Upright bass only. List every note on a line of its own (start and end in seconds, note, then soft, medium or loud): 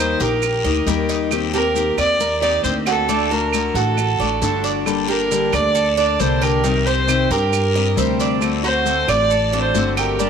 0.00 0.14 D#2 medium
0.20 0.61 A#1 medium
0.64 0.85 D2 medium
0.86 1.91 D#2 medium
1.97 2.60 D#2 medium
2.64 3.69 D2 medium
3.74 4.16 A1 medium
4.19 4.40 A1 medium
4.42 5.47 G1 medium
5.53 6.15 D2 medium
6.20 7.25 C2 medium
7.30 7.93 G2 medium
7.97 9.02 D2 medium
9.08 9.71 A1 medium
9.75 10.30 G1 medium